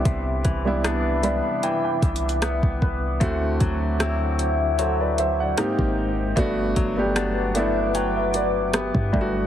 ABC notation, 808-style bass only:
X:1
M:4/4
L:1/16
Q:"Swing 16ths" 1/4=76
K:G
V:1 name="808-style bass" clef=bass
C,,2 C,,4- C,, z3 C,,3 C,, C,,2 | D,,2 D,,8- D,,2 z ^G,,,3 | G,,,2 G,,,8- G,,,3 G,, G,,,2 |]